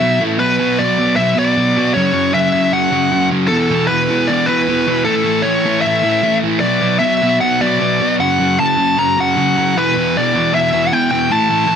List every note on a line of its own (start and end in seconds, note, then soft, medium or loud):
0.00 0.19 B2 loud
0.00 0.19 F#3 loud
0.00 0.19 B3 loud
0.00 0.21 E5 medium
0.20 0.37 A2 medium
0.20 0.38 E3 loud
0.20 0.38 A3 loud
0.38 0.58 B2 loud
0.38 0.59 F#3 loud
0.38 0.59 B3 loud
0.38 0.80 B4 loud
0.59 0.78 B2 medium
0.59 0.79 F#3 medium
0.59 0.78 B3 medium
0.79 0.97 B2 loud
0.79 0.98 F#3 loud
0.79 0.99 B3 loud
0.79 1.16 D5 medium
0.98 1.16 B2 medium
0.98 1.16 F#3 medium
0.98 1.17 B3 loud
1.16 1.34 B2 loud
1.16 1.35 F#3 loud
1.16 1.35 B3 loud
1.16 1.37 E5 medium
1.35 1.56 B2 medium
1.35 1.56 F#3 medium
1.35 1.56 B3 medium
1.35 1.93 D5 medium
1.57 1.75 B2 loud
1.57 1.76 F#3 loud
1.57 1.77 B3 loud
1.77 1.94 B2 loud
1.77 1.95 F#3 medium
1.77 1.95 B3 loud
1.94 2.12 F#2 loud
1.94 2.12 C#3 loud
1.94 2.13 F#3 loud
1.94 2.34 C#5 loud
2.13 2.31 F#2 medium
2.13 2.33 C#3 medium
2.13 2.33 F#3 medium
2.33 2.52 F#2 loud
2.33 2.52 C#3 loud
2.33 2.52 F#3 loud
2.33 2.70 E5 medium
2.53 2.71 F#2 medium
2.53 2.72 C#3 loud
2.53 2.72 F#3 medium
2.72 2.89 F#2 medium
2.72 2.90 C#3 loud
2.72 2.91 F#3 loud
2.72 3.27 F#5 loud
2.91 3.10 F#2 medium
2.91 3.11 C#3 medium
2.91 3.11 F#3 medium
3.11 3.30 F#2 loud
3.11 3.30 C#3 loud
3.11 3.30 F#3 loud
3.31 3.49 F#2 medium
3.31 3.50 C#3 loud
3.31 3.50 F#3 loud
3.48 3.69 E2 loud
3.48 3.69 B2 loud
3.48 3.70 E3 loud
3.48 3.87 A4 loud
3.70 3.88 E2 loud
3.70 3.88 B2 loud
3.70 3.90 E3 loud
3.87 4.08 E2 loud
3.87 4.08 B2 loud
3.87 4.10 E3 loud
3.87 4.29 B4 loud
4.09 4.28 E2 medium
4.09 4.28 B2 medium
4.09 4.29 E3 loud
4.27 4.46 E2 medium
4.27 4.47 B2 loud
4.27 4.47 E3 loud
4.27 4.48 D5 loud
4.46 4.67 E2 medium
4.46 4.67 B2 medium
4.46 4.67 E3 loud
4.46 5.04 B4 loud
4.68 4.86 E2 loud
4.68 4.86 B2 loud
4.68 4.87 E3 loud
4.87 5.05 E2 medium
4.87 5.05 B2 medium
4.87 5.05 E3 loud
5.05 5.23 A2 loud
5.05 5.23 E3 loud
5.05 5.23 A3 loud
5.05 5.42 A4 loud
5.24 5.42 A2 medium
5.24 5.42 E3 medium
5.24 5.43 A3 loud
5.42 5.63 A2 loud
5.42 5.64 E3 loud
5.42 5.64 A3 loud
5.42 5.81 C#5 medium
5.64 5.84 A2 medium
5.64 5.85 E3 medium
5.64 5.85 A3 loud
5.81 6.37 E5 loud
5.86 6.02 A2 loud
5.86 6.02 E3 loud
5.86 6.03 A3 loud
6.03 6.22 A2 medium
6.03 6.22 E3 medium
6.03 6.22 A3 loud
6.23 6.42 A2 loud
6.23 6.42 E3 loud
6.23 6.43 A3 loud
6.43 6.61 A2 medium
6.43 6.61 E3 medium
6.43 6.62 A3 medium
6.60 6.80 B2 medium
6.60 6.81 F#3 loud
6.60 6.80 B3 loud
6.60 6.99 D5 loud
6.81 6.99 B2 medium
6.81 7.01 F#3 loud
6.81 6.99 B3 loud
6.99 7.21 B2 medium
6.99 7.22 F#3 loud
6.99 7.22 B3 loud
6.99 7.36 E5 loud
7.22 7.39 B2 medium
7.22 7.40 F#3 medium
7.22 7.39 B3 loud
7.40 7.60 B2 loud
7.40 7.60 F#3 medium
7.40 7.60 B3 loud
7.40 7.60 F#5 loud
7.61 7.78 B2 medium
7.61 7.80 F#3 medium
7.61 7.80 B3 medium
7.61 8.15 D5 loud
7.80 8.00 B2 loud
7.80 7.99 F#3 loud
7.80 8.00 B3 loud
8.00 8.18 B2 medium
8.00 8.18 F#3 medium
8.00 8.18 B3 loud
8.19 8.38 F#2 loud
8.19 8.39 C#3 loud
8.19 8.39 F#3 loud
8.19 8.59 F#5 loud
8.39 8.57 F#2 medium
8.39 8.58 C#3 medium
8.39 8.58 F#3 loud
8.58 8.76 F#2 loud
8.58 8.76 C#3 loud
8.58 8.77 F#3 loud
8.58 8.98 A5 loud
8.77 8.96 F#2 medium
8.77 8.97 C#3 medium
8.77 8.97 F#3 loud
8.97 9.16 F#2 loud
8.97 9.17 C#3 loud
8.97 9.17 F#3 loud
8.97 9.17 A#5 loud
9.17 9.36 F#2 medium
9.17 9.36 C#3 medium
9.17 9.37 F#3 medium
9.17 9.78 F#5 loud
9.37 9.55 F#2 loud
9.37 9.56 C#3 loud
9.37 9.57 F#3 loud
9.56 9.73 F#2 medium
9.56 9.74 C#3 medium
9.56 9.74 F#3 loud
9.76 9.95 E2 loud
9.76 9.95 B2 loud
9.76 9.96 E3 loud
9.76 10.16 B4 loud
9.96 10.15 E2 medium
9.96 10.16 B2 medium
9.96 10.16 E3 loud
10.17 10.33 E2 loud
10.17 10.34 B2 loud
10.17 10.34 E3 loud
10.17 10.54 D5 loud
10.34 10.52 E2 medium
10.34 10.53 B2 loud
10.34 10.53 E3 loud
10.53 10.71 E2 loud
10.53 10.72 B2 loud
10.53 10.72 E3 loud
10.53 10.83 E5 loud
10.72 10.91 E2 medium
10.72 10.91 B2 medium
10.72 10.92 E3 loud
10.85 10.93 F#5 loud
10.92 11.10 E2 loud
10.92 11.10 B2 loud
10.92 11.11 E3 loud
10.92 11.10 G5 loud
11.11 11.29 E2 medium
11.11 11.29 B2 medium
11.11 11.29 E3 medium
11.11 11.32 G5 loud
11.30 11.48 A2 loud
11.30 11.48 E3 loud
11.30 11.49 A3 loud
11.30 11.76 A5 loud
11.49 11.66 A2 medium
11.49 11.66 E3 medium
11.49 11.67 A3 medium
11.67 11.76 A2 loud
11.67 11.76 E3 loud
11.67 11.76 A3 loud